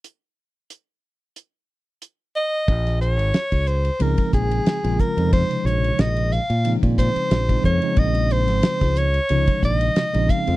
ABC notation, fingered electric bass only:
X:1
M:4/4
L:1/16
Q:"Swing 16ths" 1/4=91
K:Bbm
V:1 name="Fingered electric bass" clef=bass
z16 | B,,,3 A,,, z D,,3 D,, z B,,,2 z B,,, z F,,- | F,, z B,,,2 B,,,3 B,,2 B,,2 z B,,,2 F,, z | B,,,3 A,,, z D,,3 D,, z B,,,2 z B,,, z F,, |]